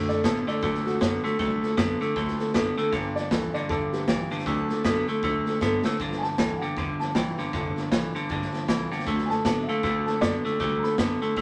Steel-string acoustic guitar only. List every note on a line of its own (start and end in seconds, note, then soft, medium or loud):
0.08 0.24 C4 soft
0.08 0.24 D4 soft
0.08 0.24 A4 medium
0.24 0.47 D3 medium
0.24 0.47 F#3 medium
0.24 0.48 C4 medium
0.24 0.47 D4 loud
0.24 0.45 A4 medium
0.47 0.61 C4 soft
0.47 0.62 D4 soft
0.47 0.62 A4 medium
0.61 0.85 F#3 medium
0.61 0.86 C4 medium
0.61 0.86 D4 medium
0.61 0.84 A4 medium
0.85 1.00 C4 soft
0.85 1.01 D4 soft
0.85 1.01 A4 medium
1.00 1.24 D3 medium
1.00 1.24 F#3 medium
1.00 1.24 C4 medium
1.00 1.23 D4 medium
1.00 1.22 A4 medium
1.23 1.38 C4 soft
1.23 1.39 D4 medium
1.23 1.39 A4 medium
1.38 1.62 D3 medium
1.38 1.62 F#3 medium
1.38 1.63 C4 loud
1.38 1.62 D4 loud
1.38 1.60 A4 medium
1.61 1.77 C4 medium
1.61 1.78 D4 medium
1.61 1.77 A4 medium
1.77 2.01 D3 medium
1.77 2.01 F#3 loud
1.77 2.01 C4 loud
1.77 2.01 D4 loud
1.77 1.99 A4 loud
2.00 2.16 C4 medium
2.00 2.17 D4 medium
2.00 2.16 A4 medium
2.16 2.39 F#3 medium
2.16 2.40 C4 medium
2.16 2.39 D4 medium
2.16 2.37 A4 medium
2.39 2.54 C4 soft
2.39 2.54 D4 medium
2.39 2.54 A4 medium
2.54 2.77 D3 loud
2.54 2.78 F#3 loud
2.54 2.78 C4 loud
2.54 2.77 D4 loud
2.54 2.76 A4 loud
2.77 2.93 C4 medium
2.77 2.93 D4 medium
2.77 2.93 A4 medium
2.92 3.16 G2 medium
2.92 3.16 D3 medium
2.92 3.16 F3 medium
2.92 3.16 B3 loud
2.92 3.16 D4 loud
2.92 3.15 G4 loud
3.16 3.31 F3 soft
3.16 3.31 B3 soft
3.16 3.31 D4 medium
3.16 3.31 G4 medium
3.31 3.54 G2 medium
3.31 3.54 D3 medium
3.31 3.55 F3 medium
3.31 3.55 B3 medium
3.31 3.54 D4 medium
3.31 3.53 G4 loud
3.54 3.68 F3 medium
3.54 3.70 B3 soft
3.54 3.70 D4 medium
3.54 3.70 G4 medium
3.69 3.93 F3 medium
3.69 3.92 D4 medium
3.69 3.91 G4 medium
3.93 4.07 F3 soft
3.93 4.08 B3 soft
3.93 4.08 D4 medium
3.93 4.08 G4 medium
4.08 4.31 G2 medium
4.08 4.31 D3 medium
4.08 4.31 F3 medium
4.08 4.31 B3 medium
4.08 4.30 D4 medium
4.08 4.29 G4 medium
4.30 4.46 F3 soft
4.30 4.47 B3 medium
4.30 4.47 D4 medium
4.30 4.46 G4 medium
4.46 4.69 D3 medium
4.46 4.70 F#3 medium
4.46 4.70 C4 loud
4.46 4.69 D4 medium
4.46 4.67 A4 medium
4.69 4.84 C4 soft
4.69 4.85 D4 medium
4.69 4.84 A4 medium
4.84 5.08 D3 loud
4.84 5.08 F#3 loud
4.84 5.08 C4 loud
4.84 5.08 D4 loud
4.84 5.06 A4 loud
5.07 5.22 C4 soft
5.07 5.23 D4 medium
5.07 5.23 A4 medium
5.22 5.46 F#3 medium
5.22 5.46 C4 medium
5.22 5.46 D4 medium
5.22 5.45 A4 medium
5.46 5.61 C4 soft
5.46 5.61 D4 soft
5.46 5.61 A4 medium
5.61 5.84 D3 loud
5.61 5.85 F#3 medium
5.61 5.85 C4 loud
5.61 5.84 D4 loud
5.61 5.82 A4 loud
5.83 6.00 C4 medium
5.83 6.00 D4 medium
5.83 5.99 A4 medium
5.99 6.23 G2 medium
5.99 6.23 D3 medium
5.99 6.23 F3 medium
5.99 6.23 B3 medium
5.99 6.22 D4 medium
5.99 6.21 G4 medium
6.22 6.38 F3 soft
6.22 6.38 B3 medium
6.22 6.39 D4 soft
6.22 6.38 G4 medium
6.38 6.61 G2 medium
6.38 6.62 D3 loud
6.38 6.62 F3 medium
6.38 6.62 B3 medium
6.38 6.61 D4 loud
6.38 6.60 G4 medium
6.61 6.75 F3 soft
6.61 6.76 B3 medium
6.61 6.77 D4 soft
6.61 6.77 G4 medium
6.76 6.99 F3 medium
6.76 7.00 B3 medium
6.76 7.00 D4 medium
6.76 6.98 G4 medium
7.00 7.15 F3 soft
7.00 7.15 B3 soft
7.00 7.16 D4 soft
7.00 7.15 G4 medium
7.15 7.38 G2 medium
7.15 7.38 D3 medium
7.15 7.38 F3 medium
7.15 7.39 B3 medium
7.15 7.37 D4 medium
7.15 7.36 G4 medium
7.38 7.53 F3 medium
7.38 7.54 B3 medium
7.38 7.54 D4 medium
7.38 7.53 G4 medium
7.54 7.76 G2 medium
7.54 7.77 D3 medium
7.54 7.77 F3 medium
7.54 7.77 B3 medium
7.54 7.76 D4 medium
7.54 7.75 G4 medium
7.76 7.91 F3 soft
7.76 7.91 B3 medium
7.76 7.92 D4 medium
7.76 7.92 G4 medium
7.91 8.15 G2 loud
7.91 8.15 D3 loud
7.91 8.15 F3 loud
7.91 8.14 B3 loud
7.91 8.14 D4 loud
7.91 8.12 G4 loud
8.13 8.28 F3 medium
8.13 8.29 B3 medium
8.13 8.30 D4 medium
8.13 8.29 G4 medium
8.29 8.53 F3 medium
8.29 8.53 B3 medium
8.29 8.52 D4 medium
8.29 8.51 G4 medium
8.52 8.68 F3 soft
8.52 8.68 B3 soft
8.52 8.69 D4 medium
8.52 8.68 G4 medium
8.68 8.91 G2 medium
8.68 8.92 D3 medium
8.68 8.92 F3 loud
8.68 8.92 B3 loud
8.68 8.91 D4 loud
8.68 8.90 G4 loud
8.91 9.07 F3 medium
8.91 9.07 B3 medium
8.91 9.07 D4 medium
8.91 9.07 G4 medium
9.06 9.30 D3 medium
9.06 9.30 F#3 loud
9.06 9.30 C4 medium
9.06 9.30 D4 loud
9.06 9.28 A4 loud
9.29 9.45 C4 soft
9.29 9.45 D4 medium
9.29 9.45 A4 medium
9.45 9.68 D3 medium
9.45 9.68 F#3 medium
9.45 9.68 C4 loud
9.45 9.68 D4 medium
9.45 9.66 A4 loud
9.67 9.83 C4 soft
9.67 9.84 D4 medium
9.67 9.83 A4 medium
9.83 10.06 F#3 medium
9.83 10.07 C4 medium
9.83 10.06 D4 medium
9.83 10.05 A4 medium
10.06 10.21 C4 soft
10.06 10.22 D4 medium
10.06 10.21 A4 medium
10.21 10.44 D3 medium
10.21 10.45 F#3 medium
10.21 10.45 C4 medium
10.21 10.44 D4 medium
10.21 10.43 A4 medium
10.44 10.59 C4 soft
10.44 10.60 D4 medium
10.44 10.60 A4 medium
10.59 10.83 D3 medium
10.59 10.83 F#3 medium
10.59 10.83 C4 medium
10.59 10.83 D4 medium
10.59 10.81 A4 medium
10.83 10.97 C4 soft
10.83 10.98 D4 medium
10.83 10.98 A4 medium
10.98 11.21 D3 medium
10.98 11.21 F#3 medium
10.98 11.21 C4 medium
10.98 11.21 D4 medium
10.98 11.20 A4 loud
11.21 11.36 C4 soft
11.21 11.37 D4 medium
11.21 11.36 A4 medium
11.36 11.41 F#3 medium
11.36 11.41 C4 medium
11.36 11.41 D4 medium